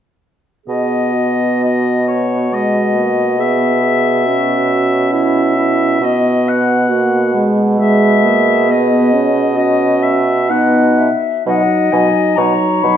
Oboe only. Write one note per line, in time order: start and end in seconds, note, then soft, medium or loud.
0.69 1.59 D#5 soft
1.63 2.07 D#5 soft
2.08 2.55 C#5 soft
2.53 3.41 D#5 soft
3.39 5.13 E5 soft
5.13 6.05 E5 soft
6.03 6.50 D#5 soft
6.48 7.52 F#5 soft
7.79 8.72 E5 soft
8.71 9.57 D#5 soft
9.57 10.04 D#5 soft
10.02 10.51 E5 soft
10.50 11.13 F#5 soft
11.48 12.39 D#5 soft
12.38 12.97 C#5 soft